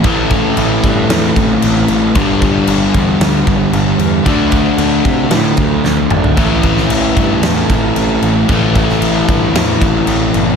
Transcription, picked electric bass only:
\new Staff \with { instrumentName = "Picked electric bass" } { \clef bass \time 4/4 \key a \dorian \tempo 4 = 114 a,,4 a,,8 g,8 e,8 a,,8 a,,8 a,,8 | g,,4 g,,8 e,8 d,8 g,,8 g,,8 e,8 | d,4 d,8 c8 a,8 d,8 d,8 gis,,8 | a,,4 a,,8 g,8 e,8 a,,8 a,,8 a,,8 |
a,,4 a,,8 g,8 e,8 a,,8 a,,8 fis,,8 | }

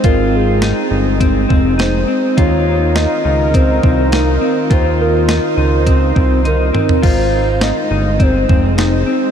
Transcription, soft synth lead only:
\new Staff \with { instrumentName = "Soft synth lead" } { \time 4/4 \key aes \major \tempo 4 = 103 bes'8 aes'4 r4. c''4 | des''4 ees''4 c''4 bes'4 | c''8 bes'4 r4. bes'4 | c''4 ees''4 c''4 c''4 | }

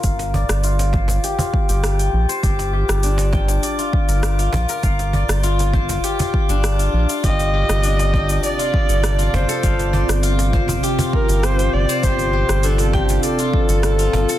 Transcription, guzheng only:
\new Staff \with { instrumentName = "Guzheng" } { \time 4/4 \key g \minor \tempo 4 = 100 f''16 r16 d''8 f'8 c''16 r16 g'16 f'8 g'8 g''16 r16 c''16 | g'16 r16 g'16 r16 d'16 r16 g''8 d''16 f'16 r16 bes'8 f'16 r16 bes'16 | f''16 r16 d''8 f'8 c''16 r16 g'16 f'16 r16 d'16 r16 f'16 r16 f'16 | g'16 r16 g'16 r16 d'16 r16 g''8 d''16 f'16 r16 a'8 f'16 r16 a'16 |
f''16 r16 d''8 f'8 c''16 r16 g'16 f'8 g'8 g''16 r16 c''16 | g'16 r16 g'16 r16 d'16 r16 g''8 d''16 f'16 r16 a'8 f'16 r16 a'16 | }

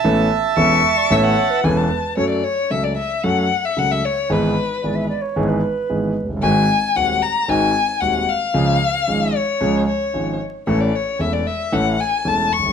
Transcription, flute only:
\new Staff \with { instrumentName = "Flute" } { \time 4/4 \key a \major \tempo 4 = 113 r4 e''8. d''16 cis''8. b'4~ b'16 | \key fis \minor r1 | r4 d''16 e''16 d''16 cis''8 b'4. r16 | r1 |
r1 | r1 | }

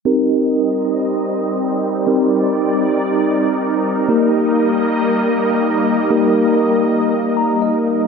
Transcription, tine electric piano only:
\new Staff \with { instrumentName = "Tine electric piano" } { \time 4/4 \key c \minor \tempo 4 = 119 << { r1 | r1 | r1 | r2 r8 bes''8 ees''4 | } \\ { <c' ees' g' bes'>1 | <c' ees' g' bes'>1 | <bes ees' g' bes'>1 | <bes ees' g' bes'>1 | } >> }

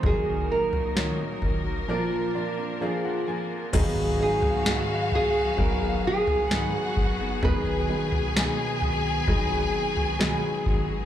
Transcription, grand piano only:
<<
  \new Staff \with { instrumentName = "Grand piano" } { \time 4/4 \key aes \dorian \tempo 4 = 65 << { r2 r8 d''8 f''16 ges''16 aes''8 | r1 | r1 | } \\ { <f ges ees' bes'>4 <ges ees' des''>4 <f d' bes'>4 <f d' aes'>4 | <ges ces' ees' aes'>8 <ges ces' ees' aes'>8 <ges ces' ees' aes'>4 <ges ces' ees' bes'>4 <ges ces' ees' aes'>4 | <fis b dis' gis'>8 <fis b dis' b'>8 <fis b dis' gis'>4 <fis b dis' gis'>4 <fis b dis' gis'>4 | } >> }
  \new Staff \with { instrumentName = "Grand piano" } { \clef bass \time 4/4 \key aes \dorian bes,2 bes,2 | <aes, ees>1 | b,1 | }
>>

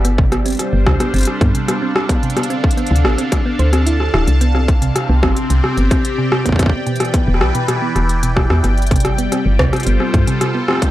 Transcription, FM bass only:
\new Staff \with { instrumentName = "FM bass" } { \clef bass \time 4/4 \key g \mixolydian \tempo 4 = 110 g,,4 r16 g,,16 d,16 r16 g,,16 r16 g,16 r4 r16 | r4 r16 d,16 a,,16 r8. d,4 d,,16 c,16~ | c,4 r16 c,16 g,,16 r16 c,16 r16 g,,16 r4 r16 | r4 r16 e,,16 b,,16 r8. e,,4 e,16 g,,16~ |
g,,4 r16 g,,16 d,16 r16 g,,16 r16 g,16 r4 r16 | }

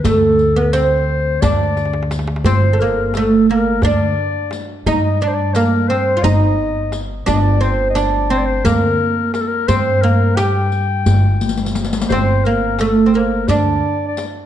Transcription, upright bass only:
\new Staff \with { instrumentName = "Upright bass" } { \clef bass \time 7/8 \tempo 4 = 87 d,2 d,4. | g,,2 d,8 r4 | g,2 g,,4. | g,,2 d,8 r4 |
g,2 g,,4. | g,,2 d,8 r4 | }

